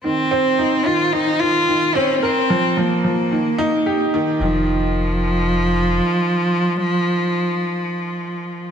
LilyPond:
<<
  \new Staff \with { instrumentName = "Cello" } { \time 4/4 \key ees \mixolydian \tempo 4 = 110 c'4. f'8 ees'8 f'4 des'8 | c'4 bes2~ bes8 r8 | f1~ | f1 | }
  \new Staff \with { instrumentName = "Upright piano" } { \clef bass \time 4/4 \key ees \mixolydian ees8 c'8 ees'8 ees8 ees8 ees8 ees8 c'8 | bes'8 f8 f8 f8 ees8 ees'8 g'8 ees8 | ees8 r2. r8 | r1 | }
  \new Staff \with { instrumentName = "Analog synth bass" } { \clef bass \time 4/4 \key ees \mixolydian f,,1 | bes,,2 ees,,2 | f,,2. r4 | r1 | }
>>